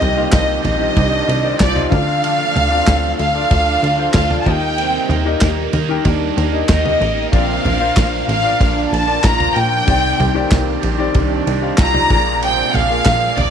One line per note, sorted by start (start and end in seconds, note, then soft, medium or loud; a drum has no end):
0.00 0.28 C2 loud
0.00 0.14 C3 loud
0.00 0.60 C3 medium
0.00 1.90 C3 medium
0.00 0.13 D#3 medium
0.00 1.90 D#3 medium
0.00 0.30 G3 medium
0.00 0.14 C4 loud
0.00 1.90 C4 medium
0.00 0.31 C4 medium
0.00 0.32 D4 medium
0.00 1.88 F4 medium
0.00 0.13 G4 medium
0.00 0.32 G4 medium
0.00 1.90 G4 medium
0.00 0.13 C5 medium
0.00 0.31 D#5 loud
0.00 floor tom medium
0.00 ride soft
0.16 0.61 A#2 loud
0.16 0.75 D#3 medium
0.16 0.62 A#3 loud
0.16 0.76 G4 medium
0.16 0.76 C5 medium
0.16 0.76 F5 medium
0.31 0.59 C2 medium
0.31 0.64 G3 medium
0.31 0.64 C4 medium
0.31 0.62 D4 medium
0.31 0.61 G4 medium
0.31 0.62 D#5 loud
0.31 kick loud
0.31 snare loud
0.31 clap medium
0.31 ride medium
0.62 0.91 A#1 medium
0.62 0.95 G3 medium
0.62 0.95 C4 medium
0.62 0.96 D4 medium
0.62 0.95 G4 medium
0.62 1.55 D#5 loud
0.62 floor tom medium
0.62 ride medium
0.79 1.39 D#3 medium
0.79 1.39 G4 medium
0.79 1.39 C5 medium
0.95 1.23 C2 loud
0.95 1.27 C3 medium
0.95 1.28 D#3 medium
0.95 1.57 D#3 loud
0.95 1.28 G3 medium
0.95 1.28 C4 medium
0.95 1.56 D4 loud
0.95 1.27 D4 medium
0.95 1.25 G4 medium
0.95 kick loud
0.95 ride medium
1.27 1.54 C2 loud
1.27 1.58 G3 soft
1.27 1.59 C4 medium
1.27 1.60 D4 medium
1.27 1.59 G4 medium
1.27 ride medium
1.43 1.73 D#4 medium
1.43 1.73 G4 medium
1.43 1.74 C5 medium
1.43 1.74 D5 medium
1.59 1.86 C2 loud
1.59 2.05 F3 loud
1.59 1.91 G3 medium
1.59 1.92 C4 medium
1.59 1.92 D4 medium
1.59 2.04 F4 loud
1.59 1.90 G4 medium
1.59 1.89 D5 medium
1.59 kick loud
1.59 snare loud
1.59 clap medium
1.59 ride medium
1.74 1.91 D#4 medium
1.74 1.91 G4 medium
1.74 1.92 C5 medium
1.74 1.92 D#5 medium
1.74 floor tom medium
1.90 2.44 D2 loud
1.90 2.83 D3 medium
1.90 4.44 F3 medium
1.90 4.44 A3 medium
1.90 2.65 D4 medium
1.90 4.44 D4 medium
1.90 2.65 F4 medium
1.90 2.23 F4 medium
1.90 2.23 A4 medium
1.90 2.65 A4 medium
1.90 2.65 D5 medium
1.90 3.14 F5 loud
1.90 kick medium
1.90 ride medium
1.94 2.23 D4 soft
2.22 2.55 D3 medium
2.22 2.68 D3 loud
2.22 2.55 F3 loud
2.22 2.68 D4 loud
2.22 2.56 D4 loud
2.22 2.55 F4 loud
2.22 2.53 A4 loud
2.22 ride medium
2.54 2.82 D2 loud
2.54 2.86 D4 soft
2.54 2.87 F4 medium
2.54 2.87 A4 medium
2.54 floor tom medium
2.54 ride soft
2.70 3.16 C3 medium
2.70 3.16 C4 loud
2.70 3.30 D4 medium
2.70 3.30 F4 medium
2.70 3.30 A4 medium
2.70 3.30 F5 loud
2.86 3.14 D2 loud
2.86 3.19 F3 medium
2.86 3.19 D4 medium
2.86 3.19 F4 medium
2.86 3.17 A4 medium
2.86 kick loud
2.86 snare loud
2.86 clap medium
2.86 ride medium
3.18 3.45 D2 medium
3.18 3.51 D4 medium
3.18 3.51 F4 medium
3.18 3.51 A4 medium
3.18 4.10 F5 loud
3.18 ride medium
3.34 3.93 D4 medium
3.34 3.94 F4 medium
3.34 3.94 A4 medium
3.34 3.94 D5 medium
3.51 3.77 D2 loud
3.51 3.83 D3 medium
3.51 4.11 D3 loud
3.51 3.83 F3 loud
3.51 4.11 D4 loud
3.51 3.83 D4 medium
3.51 3.83 F4 medium
3.51 3.81 A4 loud
3.51 kick loud
3.51 ride medium
3.82 4.09 D2 loud
3.82 4.14 D4 soft
3.82 4.15 F4 soft
3.82 4.14 A4 medium
3.82 ride medium
3.98 4.28 D4 medium
3.98 4.28 F4 medium
3.98 4.28 A4 medium
3.98 4.28 C5 medium
4.13 4.41 D2 loud
4.13 4.46 F3 medium
4.13 4.60 F3 loud
4.13 4.47 D4 medium
4.13 4.59 F4 loud
4.13 4.47 F4 medium
4.13 4.45 A4 medium
4.13 4.37 F5 medium
4.13 kick loud
4.13 snare loud
4.13 clap medium
4.13 ride medium
4.30 4.46 D4 medium
4.30 4.46 F4 medium
4.30 4.46 A4 medium
4.30 4.47 D5 medium
4.30 floor tom medium
4.40 4.47 A5 medium
4.45 4.99 D#2 loud
4.45 5.38 D#3 medium
4.45 7.30 D#3 medium
4.45 7.30 G3 medium
4.45 9.84 A#3 medium
4.45 4.78 A#3 soft
4.45 5.20 D#4 medium
4.45 4.78 D#4 medium
4.45 5.20 G4 medium
4.45 4.78 A#4 medium
4.45 5.20 A#4 medium
4.45 5.21 D#5 loud
4.45 5.42 G5 medium
4.45 kick medium
4.45 ride medium
4.78 5.23 C3 loud
4.78 5.10 D#3 medium
4.78 5.10 G3 medium
4.78 5.10 A#3 medium
4.78 5.23 C4 loud
4.78 5.10 D#4 loud
4.78 5.08 A#4 loud
4.78 ride medium
5.09 5.36 D#2 loud
5.09 5.41 A#3 soft
5.09 5.42 D#4 medium
5.09 5.42 A#4 medium
5.09 floor tom medium
5.09 ride soft
5.25 5.71 A#2 medium
5.25 5.71 A#3 loud
5.25 5.85 D#4 medium
5.25 5.85 G4 medium
5.25 5.85 A#4 medium
5.25 5.85 D#5 medium
5.41 5.68 D#2 medium
5.41 5.73 G3 medium
5.41 5.74 A#3 medium
5.41 5.73 D#4 medium
5.41 5.72 A#4 medium
5.41 kick loud
5.41 snare loud
5.41 clap medium
5.41 ride medium
5.73 6.00 D#2 medium
5.73 6.05 A#3 medium
5.73 6.06 D#4 medium
5.73 6.05 A#4 medium
5.73 floor tom medium
5.73 ride medium
5.89 6.48 D#3 medium
5.89 6.49 G4 medium
5.89 6.49 A#4 medium
5.89 6.49 G5 medium
6.04 6.31 D#2 loud
6.04 6.65 D#3 loud
6.04 6.37 D#3 medium
6.04 6.37 G3 medium
6.04 6.38 A#3 medium
6.04 6.65 D4 loud
6.04 6.37 D#4 medium
6.04 6.35 A#4 loud
6.04 kick loud
6.04 ride medium
6.36 6.63 D#2 loud
6.36 6.69 A#3 soft
6.36 6.70 D#4 medium
6.36 6.69 A#4 medium
6.36 ride medium
6.53 6.82 D#4 medium
6.53 6.83 G4 medium
6.53 6.83 A#4 medium
6.53 6.83 D#5 medium
6.68 6.95 D#2 loud
6.68 7.14 D#3 loud
6.68 7.01 G3 medium
6.68 7.02 A#3 medium
6.68 7.14 D#4 loud
6.68 7.01 D#4 medium
6.68 6.99 A#4 medium
6.68 7.29 D#5 medium
6.68 kick loud
6.68 snare loud
6.68 clap medium
6.68 ride medium
6.84 7.29 D#4 medium
6.84 7.29 G4 medium
6.84 7.29 A#4 medium
6.84 7.29 D#5 medium
6.84 floor tom medium
7.00 7.27 A1 loud
7.00 7.32 A#3 soft
7.00 7.33 D#4 medium
7.00 7.33 A#4 medium
7.00 ride medium
7.32 7.59 A#1 loud
7.32 7.65 A#2 medium
7.32 8.24 A#2 medium
7.32 7.77 C3 loud
7.32 7.65 D3 medium
7.32 9.85 F3 medium
7.32 7.65 F3 loud
7.32 7.65 A#3 loud
7.32 7.77 C4 loud
7.32 7.77 D4 medium
7.32 9.85 D4 medium
7.32 7.65 D4 loud
7.32 7.77 F4 medium
7.32 7.77 A#4 medium
7.32 7.64 A#4 loud
7.32 7.78 D5 medium
7.32 8.27 F5 medium
7.32 kick loud
7.32 ride medium
7.65 7.91 A#1 loud
7.65 7.95 F3 soft
7.65 7.97 A#3 medium
7.65 7.97 D4 medium
7.65 7.97 A#4 medium
7.65 floor tom medium
7.65 ride soft
7.80 8.26 A#2 medium
7.80 8.26 A#3 loud
7.80 8.39 D4 medium
7.80 8.39 F4 medium
7.80 8.40 A#4 medium
7.80 8.40 C5 medium
7.97 8.23 A#1 medium
7.97 8.28 F3 medium
7.97 8.29 A#3 medium
7.97 8.29 D4 medium
7.97 8.27 A#4 medium
7.97 kick loud
7.97 snare loud
7.97 clap medium
7.97 ride medium
8.28 8.54 A1 loud
8.28 8.61 F3 soft
8.28 8.61 A#3 medium
8.28 8.61 D4 medium
8.28 8.60 A#4 medium
8.28 8.88 F5 loud
8.28 ride medium
8.43 9.02 D4 medium
8.43 9.03 F4 medium
8.43 9.03 A#4 medium
8.43 9.03 D5 medium
8.60 8.87 A#1 loud
8.60 8.92 A#2 medium
8.60 9.20 D3 loud
8.60 8.93 D3 medium
8.60 8.93 F3 medium
8.60 8.93 A#3 medium
8.60 9.20 D4 loud
8.60 8.92 D4 medium
8.60 8.90 A#4 loud
8.60 kick loud
8.60 ride medium
8.92 9.18 A#1 medium
8.92 9.23 F3 soft
8.92 9.24 A#3 medium
8.92 9.24 D4 medium
8.92 9.24 A#4 medium
8.92 9.22 A5 loud
8.92 ride medium
9.06 9.37 D4 medium
9.06 9.37 F4 medium
9.06 9.37 A#4 medium
9.06 9.37 D5 medium
9.23 9.50 A#1 loud
9.23 9.56 F3 medium
9.23 9.69 F3 loud
9.23 9.56 A#3 medium
9.23 9.55 D4 medium
9.23 9.69 F4 loud
9.23 9.54 A#4 medium
9.23 9.56 A#5 loud
9.23 kick loud
9.23 snare loud
9.23 clap medium
9.23 ride medium
9.38 9.83 D4 medium
9.38 9.84 F4 medium
9.38 9.84 A#4 medium
9.38 9.84 D5 medium
9.38 floor tom medium
9.55 9.82 A#1 loud
9.55 9.88 F3 medium
9.55 9.88 A#3 medium
9.55 9.88 D4 medium
9.55 9.87 A#4 medium
9.55 10.52 G5 loud
9.55 ride medium
9.87 10.14 C2 loud
9.87 10.19 C3 medium
9.87 12.08 C3 medium
9.87 10.79 C3 medium
9.87 10.33 C3 loud
9.87 10.31 D#3 medium
9.87 12.08 D#3 medium
9.87 10.19 D#3 medium
9.87 10.20 G3 loud
9.87 12.08 C4 medium
9.87 10.33 C4 loud
9.87 10.19 C4 medium
9.87 10.18 D4 medium
9.87 10.32 G4 medium
9.87 12.08 G4 loud
9.87 10.17 G4 medium
9.87 10.32 C5 medium
9.87 13.50 D5 medium
9.87 10.32 D5 medium
9.87 kick loud
9.87 ride medium
10.18 10.46 C2 loud
10.18 10.49 G3 medium
10.18 10.50 C4 medium
10.18 10.51 D4 medium
10.18 10.51 G4 medium
10.18 floor tom medium
10.18 ride soft
10.34 10.80 A#2 medium
10.34 10.94 D#3 medium
10.34 10.80 A#3 loud
10.34 10.94 G4 medium
10.34 10.94 C5 medium
10.34 10.95 D5 loud
10.50 10.78 C2 loud
10.50 10.82 G3 medium
10.50 10.83 C4 medium
10.50 10.82 D4 medium
10.50 10.81 G4 medium
10.50 kick loud
10.50 snare loud
10.50 clap medium
10.50 ride medium
10.82 11.10 A#1 loud
10.82 11.14 G3 medium
10.82 11.14 C4 medium
10.82 11.15 D4 medium
10.82 11.14 G4 medium
10.82 ride medium
10.98 11.57 D#3 medium
10.98 11.58 G4 medium
10.98 11.58 C5 medium
10.98 11.58 D5 loud
11.14 11.41 C2 loud
11.14 11.46 C3 medium
11.14 11.75 D#3 loud
11.14 11.47 D#3 medium
11.14 11.47 G3 medium
11.14 11.47 C4 loud
11.14 11.75 D4 loud
11.14 11.45 D4 loud
11.14 11.44 G4 medium
11.14 kick loud
11.14 ride medium
11.45 11.73 C2 loud
11.45 11.76 G3 soft
11.45 11.77 C4 soft
11.45 11.78 D4 soft
11.45 11.78 G4 medium
11.45 ride medium
11.61 11.91 D#4 medium
11.61 11.92 G4 medium
11.61 11.92 C5 medium
11.61 11.92 F5 medium
11.77 12.05 C2 loud
11.77 12.24 F3 loud
11.77 12.10 G3 medium
11.77 12.10 C4 medium
11.77 12.09 D4 medium
11.77 12.24 F4 loud
11.77 12.09 G4 medium
11.77 kick loud
11.77 snare loud
11.77 clap medium
11.77 ride medium
11.81 12.40 A#5 loud
11.93 12.10 D#4 medium
11.93 12.10 G4 medium
11.93 12.10 C5 medium
11.93 12.09 D5 medium
11.93 floor tom medium
12.09 12.63 A#1 loud
12.09 13.02 A#2 medium
12.09 12.41 F3 medium
12.09 13.50 G#3 medium
12.09 13.50 A#3 medium
12.09 12.42 A#3 medium
12.09 12.42 D4 medium
12.09 12.84 F4 medium
12.09 12.42 G#4 medium
12.09 12.84 G#4 medium
12.09 12.84 A#4 medium
12.09 12.84 D5 medium
12.09 kick loud
12.09 ride medium
12.41 12.74 A#2 medium
12.41 12.87 C3 loud
12.41 12.74 D3 medium
12.41 12.74 F3 loud
12.41 12.74 A#3 loud
12.41 12.87 C4 loud
12.41 12.73 D4 medium
12.41 12.72 G#4 loud
12.41 12.73 G5 loud
12.41 ride medium
12.73 13.01 A#1 medium
12.73 13.04 F3 medium
12.73 13.05 A#3 medium
12.73 13.06 D4 medium
12.73 13.05 G#4 medium
12.73 13.38 F5 loud
12.73 floor tom medium
12.73 ride medium
12.89 13.35 A#2 loud
12.89 13.35 A#3 loud
12.89 13.49 F4 medium
12.89 13.49 G#4 medium
12.89 13.49 A#4 medium
12.89 13.49 F5 medium
13.05 13.32 A#1 medium
13.05 13.37 F3 medium
13.05 13.38 A#3 medium
13.05 13.37 D4 medium
13.05 13.36 G#4 medium
13.05 kick loud
13.05 snare loud
13.05 clap medium
13.05 ride medium
13.37 13.50 A#1 medium
13.37 13.50 F3 medium
13.37 13.50 A#3 medium
13.37 13.50 D4 medium
13.37 13.50 G#4 medium
13.37 13.50 D5 loud
13.37 floor tom medium
13.37 ride medium